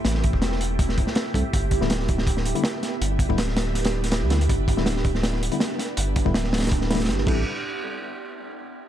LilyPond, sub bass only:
\new Staff \with { instrumentName = "Sub bass" } { \clef bass \time 4/4 \key e \phrygian \tempo 4 = 162 a,,8. e,,2 r8. c,16 r16 | g,,8. d,,2 r4 r16 | g,,8. d,,2~ d,,8 d,8. | g,,8. d,,2 r4 r16 |
g,,8. d,,2~ d,,16 g,,8 a,,8 | r1 | }